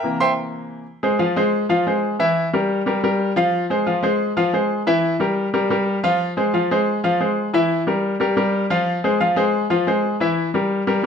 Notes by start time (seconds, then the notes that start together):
Already playing: A#4 E5 G5 A#5
0.03 C3 E3 A#3
0.20 C5 E5 G5 C6
1.03 G#3 G#4 C5
1.19 F3 F4 F5
1.36 G#3 G#4 C5
1.69 F3 F4 F5
1.87 G#3 G#4 C5
2.19 E3 E4 E5
2.53 G3 G4 A#4
2.86 G3 G4 A#4
3.03 G3 G4 A#4
3.36 F3 F4 F5
3.70 G#3 G#4 C5
3.87 F3 F4 F5
4.03 G#3 G#4 C5
4.37 F3 F4 F5
4.53 G#3 G#4 C5
4.87 E3 E4 E5
5.20 G3 G4 A#4
5.54 G3 G4 A#4
5.70 G3 G4 A#4
6.03 F3 F4 F5
6.37 G#3 G#4 C5
6.53 F3 F4 F5
6.71 G#3 G#4 C5
7.04 F3 F4 F5
7.20 G#3 G#4 C5
7.53 E3 E4 E5
7.87 G3 G4 A#4
8.20 G3 G4 A#4
8.37 G3 G4 A#4
8.70 F3 F4 F5
9.04 G#3 G#4 C5
9.20 F3 F4 F5
9.36 G#3 G#4 C5
9.70 F3 F4 F5
9.87 G#3 G#4 C5
10.20 E3 E4 E5
10.54 G3 G4 A#4
10.87 G3 G4 A#4